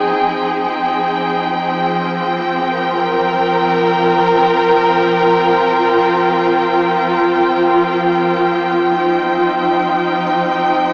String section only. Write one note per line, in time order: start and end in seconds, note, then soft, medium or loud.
0.00 10.93 F3 medium
0.00 10.93 C4 medium
0.00 2.08 D#4 medium
0.00 3.02 G#4 medium
0.00 10.93 G5 medium
1.74 10.93 F4 medium
2.69 8.61 A#4 medium
8.87 10.93 D#4 medium